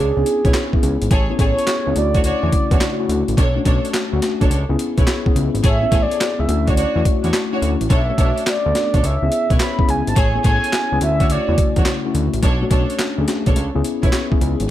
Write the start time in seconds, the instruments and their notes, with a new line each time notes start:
Already playing: analog synth bass C#2
0.00 soft synth lead G#4
0.16 analog synth bass C#2, tine electric piano B3 C#4 D4 G#4
0.24 tine electric piano E4, closed hi-hat
0.45 analog synth bass B1, string section E4 B4 C#5, kick, closed hi-hat
0.54 snare, clap, closed hi-hat
0.73 tine electric piano B3 C#4 E4 G#4, kick
0.83 analog synth bass C#2, closed hi-hat
1.02 analog synth bass G#1, closed hi-hat
1.11 analog synth bass A1, string section G#4 A4 C#5, kick, closed hi-hat
1.30 tine electric piano B3 C#4 E4 G4
1.37 analog synth bass A1, tine electric piano G#4, string section G#4 A4 C#5, kick, closed hi-hat
1.41 soft synth lead C#5
1.58 closed hi-hat
1.67 snare, clap, closed hi-hat
1.86 analog synth bass C#2, tine electric piano B3 C#4 E4 G#4
1.96 analog synth bass D2, tine electric piano A3 C#4 E4 F#4, soft synth lead D5, closed hi-hat
2.14 string section D4 F#4 C#5, kick, closed hi-hat
2.24 string section D4 F#4 C#5, soft synth lead D5, closed hi-hat
2.42 analog synth bass E2, tine electric piano C#3 A3 E4 F#4
2.52 kick, closed hi-hat
2.71 analog synth bass E2, string section D4 F#4 C#5, kick, closed hi-hat
2.81 snare, clap, closed hi-hat
2.99 tine electric piano A3 C#4 E4 F#4
3.09 analog synth bass D2, closed hi-hat
3.28 analog synth bass A1, closed hi-hat
3.37 analog synth bass B1, string section D4 A4 C#5, kick, closed hi-hat
3.55 tine electric piano A3 C#4 D4 F#4
3.65 analog synth bass B1, string section D4 A4 C#5, kick, closed hi-hat
3.85 closed hi-hat
3.94 snare, clap, closed hi-hat
4.12 analog synth bass D2, tine electric piano A3 C#4 D4 F#4
4.22 snare, closed hi-hat
4.41 analog synth bass B1, string section D4 A4 C#5, kick, closed hi-hat
4.50 analog synth bass C#2, closed hi-hat
4.69 analog synth bass C#2, tine electric piano B3 C#4 E4 G#4
4.79 closed hi-hat
4.98 analog synth bass B1, string section E4 B4 C#5, kick, closed hi-hat
5.07 snare, clap, closed hi-hat
5.25 tine electric piano B3 C#4 E4 G#4, kick
5.35 analog synth bass C#2, closed hi-hat
5.54 analog synth bass G#1, closed hi-hat
5.64 analog synth bass A1, string section G#4 A4 C#5, soft synth lead E5, kick, closed hi-hat
5.82 tine electric piano B3 C#4 E4 G#4
5.92 analog synth bass A1, string section G#4 A4 C#5, kick, closed hi-hat
6.02 soft synth lead D5
6.11 closed hi-hat
6.21 snare, clap, closed hi-hat
6.39 analog synth bass C#2, tine electric piano B3 C#4 E4 G#4, soft synth lead E5
6.48 analog synth bass D2, tine electric piano A3 C#4 E4 F#4, closed hi-hat
6.67 string section D4 F#4 C#5, soft synth lead D5, kick, closed hi-hat
6.77 string section D4 F#4 C#5, closed hi-hat
6.96 analog synth bass E2, tine electric piano A3 C#4 E4 F#4
7.05 kick, closed hi-hat
7.24 analog synth bass E2, string section D4 F#4 C#5, closed hi-hat
7.33 snare, clap, closed hi-hat
7.52 tine electric piano A3 C#4 E4 F#4, string section D4 F#4 C#5
7.62 analog synth bass D2, closed hi-hat
7.81 analog synth bass A1, closed hi-hat
7.90 analog synth bass B1, string section D4 A4 C#5, soft synth lead E5, kick, closed hi-hat
8.09 tine electric piano A3 C#4 D4 F#4
8.18 analog synth bass B1, string section D4 A4 C#5, kick, closed hi-hat
8.38 closed hi-hat
8.47 soft synth lead D5, snare, clap, closed hi-hat
8.65 analog synth bass D2, tine electric piano A3 B3 D4 A4
8.75 snare, closed hi-hat
8.93 analog synth bass B1, string section D4 A4 C#5, kick, closed hi-hat
9.03 analog synth bass C#2, soft synth lead E5, closed hi-hat
9.22 analog synth bass C#2, tine electric piano B3 C#4 E4 G#4
9.32 closed hi-hat
9.50 analog synth bass B1, string section E4 B4 C#5, kick, closed hi-hat
9.60 soft synth lead B5, snare, clap, closed hi-hat
9.78 tine electric piano B3 C#4 E4 G#4, kick
9.88 analog synth bass C#2, soft synth lead G#5, closed hi-hat
10.07 analog synth bass G#1, soft synth lead A5, closed hi-hat
10.16 analog synth bass A1, string section G#4 A4 C#5, soft synth lead G#5, kick, closed hi-hat
10.35 tine electric piano B3 C#4 E4 G#4
10.44 analog synth bass A1, string section G#4 A4 C#5, soft synth lead G#5, kick, closed hi-hat
10.64 closed hi-hat
10.73 snare, clap, closed hi-hat
10.91 analog synth bass C#2, tine electric piano B3 C#4 E4 G#4
11.01 analog synth bass D2, tine electric piano A3 C#4 E4 F#4, soft synth lead E5, closed hi-hat
11.20 string section D4 F#4 C#5, kick, closed hi-hat
11.29 string section D4 F#4 C#5, soft synth lead D5, closed hi-hat
11.48 analog synth bass E2, tine electric piano C#3 A3 E4 F#4
11.58 kick, closed hi-hat
11.76 analog synth bass E2, string section D4 F#4 C#5, kick, closed hi-hat
11.85 snare, clap, closed hi-hat
12.05 tine electric piano A3 C#4 E4 F#4
12.15 analog synth bass D2, closed hi-hat
12.34 analog synth bass A1, closed hi-hat
12.43 analog synth bass B1, string section D4 A4 C#5, kick, closed hi-hat
12.62 tine electric piano A3 C#4 D4 F#4
12.71 analog synth bass B1, string section D4 A4 C#5, kick, closed hi-hat
12.90 closed hi-hat
12.99 snare, clap, closed hi-hat
13.18 analog synth bass D2, tine electric piano A3 C#4 D4 G#4
13.28 snare, closed hi-hat
13.46 analog synth bass B1, string section D4 A4 C#5, kick, closed hi-hat
13.56 analog synth bass C#2, closed hi-hat
13.74 analog synth bass C#2, tine electric piano B3 C#4 E4 G#4
13.84 closed hi-hat
14.03 analog synth bass B1, string section E4 B4 C#5, kick, closed hi-hat
14.12 snare, clap, closed hi-hat
14.31 tine electric piano B3 C#4 E4 G#4, kick
14.41 analog synth bass C#2, closed hi-hat
14.60 analog synth bass G#1, closed hi-hat